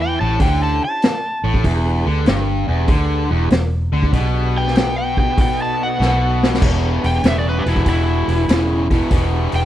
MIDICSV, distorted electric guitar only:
0, 0, Header, 1, 2, 480
1, 0, Start_track
1, 0, Tempo, 621762
1, 1272, Time_signature, 4, 2, 24, 8
1, 7450, End_track
2, 0, Start_track
2, 0, Title_t, "Distorted electric guitar"
2, 0, Program_c, 0, 30
2, 0, Note_on_c, 0, 52, 92
2, 147, Note_off_c, 0, 52, 0
2, 156, Note_on_c, 0, 45, 101
2, 307, Note_off_c, 0, 45, 0
2, 310, Note_on_c, 0, 50, 98
2, 624, Note_off_c, 0, 50, 0
2, 1114, Note_on_c, 0, 45, 95
2, 1267, Note_off_c, 0, 45, 0
2, 1268, Note_on_c, 0, 40, 97
2, 1583, Note_off_c, 0, 40, 0
2, 1588, Note_on_c, 0, 50, 93
2, 1743, Note_on_c, 0, 43, 102
2, 1744, Note_off_c, 0, 50, 0
2, 2060, Note_off_c, 0, 43, 0
2, 2066, Note_on_c, 0, 40, 103
2, 2223, Note_off_c, 0, 40, 0
2, 2223, Note_on_c, 0, 50, 99
2, 2540, Note_off_c, 0, 50, 0
2, 2549, Note_on_c, 0, 40, 91
2, 2697, Note_off_c, 0, 40, 0
2, 2706, Note_on_c, 0, 40, 72
2, 2966, Note_off_c, 0, 40, 0
2, 3031, Note_on_c, 0, 50, 98
2, 3185, Note_off_c, 0, 50, 0
2, 3188, Note_on_c, 0, 47, 101
2, 4619, Note_off_c, 0, 47, 0
2, 4628, Note_on_c, 0, 47, 94
2, 5105, Note_off_c, 0, 47, 0
2, 5108, Note_on_c, 0, 40, 76
2, 5113, Note_on_c, 0, 47, 83
2, 5559, Note_off_c, 0, 40, 0
2, 5561, Note_off_c, 0, 47, 0
2, 5588, Note_on_c, 0, 40, 74
2, 5593, Note_on_c, 0, 49, 85
2, 5881, Note_off_c, 0, 40, 0
2, 5883, Note_off_c, 0, 49, 0
2, 5917, Note_on_c, 0, 40, 72
2, 5922, Note_on_c, 0, 47, 73
2, 6058, Note_off_c, 0, 40, 0
2, 6061, Note_off_c, 0, 47, 0
2, 6071, Note_on_c, 0, 40, 75
2, 6075, Note_on_c, 0, 47, 87
2, 6521, Note_off_c, 0, 40, 0
2, 6523, Note_off_c, 0, 47, 0
2, 6551, Note_on_c, 0, 40, 73
2, 6556, Note_on_c, 0, 49, 81
2, 6843, Note_off_c, 0, 40, 0
2, 6845, Note_off_c, 0, 49, 0
2, 6873, Note_on_c, 0, 40, 75
2, 6879, Note_on_c, 0, 47, 72
2, 7017, Note_off_c, 0, 40, 0
2, 7020, Note_off_c, 0, 47, 0
2, 7032, Note_on_c, 0, 40, 78
2, 7037, Note_on_c, 0, 47, 82
2, 7450, Note_off_c, 0, 40, 0
2, 7450, Note_off_c, 0, 47, 0
2, 7450, End_track
0, 0, End_of_file